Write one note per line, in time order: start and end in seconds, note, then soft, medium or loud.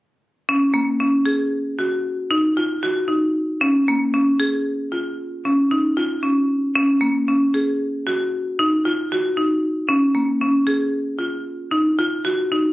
0.49 0.74 C#4 medium
0.74 1.00 A#3 medium
1.00 1.26 C#4 medium
1.26 1.78 G#4 medium
1.79 2.31 F#4 medium
2.31 2.57 D#4 medium
2.57 2.83 F4 medium
2.83 3.09 F#4 medium
3.08 3.61 D#4 medium
3.61 3.87 C#4 medium
3.88 4.14 A#3 medium
4.14 4.40 C#4 medium
4.40 4.92 G#4 medium
4.92 5.44 F4 medium
5.45 5.71 C#4 medium
5.71 5.97 D#4 medium
5.97 6.23 F4 medium
6.23 6.74 C#4 medium
6.76 7.01 C#4 medium
7.01 7.27 A#3 medium
7.28 7.54 C#4 medium
7.54 8.06 G#4 medium
8.07 8.58 F#4 medium
8.59 8.85 D#4 medium
8.85 9.11 F4 medium
9.12 9.37 F#4 medium
9.37 9.89 D#4 medium
9.89 10.15 C#4 medium
10.15 10.41 A#3 medium
10.41 10.67 C#4 medium
10.67 11.20 G#4 medium
11.19 11.72 F4 medium
11.71 11.98 D#4 medium
11.99 12.25 F4 medium
12.25 12.51 F#4 medium
12.52 12.73 D#4 medium